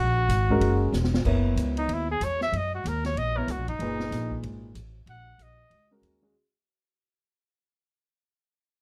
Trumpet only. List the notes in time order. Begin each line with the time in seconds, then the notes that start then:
Already playing: F#4
1.78 D#4
1.94 E4
2.11 G#4
2.24 C#5
2.42 E5
2.57 D#5
2.75 F#4
2.88 A#4
3.06 C#5
3.18 D#5
3.37 A#4
3.51 F#4
3.69 D#4
5.10 F#5
5.42 D#5